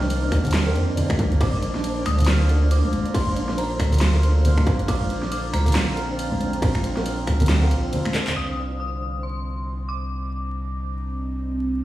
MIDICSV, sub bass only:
0, 0, Header, 1, 2, 480
1, 0, Start_track
1, 0, Key_signature, -3, "minor"
1, 0, Tempo, 434783
1, 1552, Time_signature, 4, 2, 24, 8
1, 13072, End_track
2, 0, Start_track
2, 0, Title_t, "Sub bass"
2, 0, Program_c, 0, 38
2, 0, Note_on_c, 0, 36, 99
2, 339, Note_off_c, 0, 36, 0
2, 352, Note_on_c, 0, 39, 89
2, 832, Note_on_c, 0, 41, 82
2, 848, Note_off_c, 0, 39, 0
2, 1312, Note_on_c, 0, 38, 99
2, 1328, Note_off_c, 0, 41, 0
2, 1536, Note_off_c, 0, 38, 0
2, 1551, Note_on_c, 0, 34, 96
2, 2259, Note_off_c, 0, 34, 0
2, 2274, Note_on_c, 0, 38, 93
2, 3116, Note_off_c, 0, 38, 0
2, 3234, Note_on_c, 0, 32, 111
2, 3363, Note_off_c, 0, 32, 0
2, 3472, Note_on_c, 0, 34, 98
2, 4179, Note_off_c, 0, 34, 0
2, 4190, Note_on_c, 0, 38, 88
2, 5151, Note_on_c, 0, 34, 94
2, 5168, Note_off_c, 0, 38, 0
2, 5376, Note_off_c, 0, 34, 0
2, 5390, Note_on_c, 0, 34, 99
2, 6099, Note_off_c, 0, 34, 0
2, 6112, Note_on_c, 0, 38, 90
2, 6336, Note_off_c, 0, 38, 0
2, 6351, Note_on_c, 0, 34, 81
2, 7299, Note_off_c, 0, 34, 0
2, 7310, Note_on_c, 0, 34, 102
2, 8019, Note_off_c, 0, 34, 0
2, 8031, Note_on_c, 0, 38, 88
2, 8514, Note_on_c, 0, 34, 103
2, 8531, Note_off_c, 0, 38, 0
2, 8753, Note_off_c, 0, 34, 0
2, 9234, Note_on_c, 0, 36, 84
2, 13072, Note_off_c, 0, 36, 0
2, 13072, End_track
0, 0, End_of_file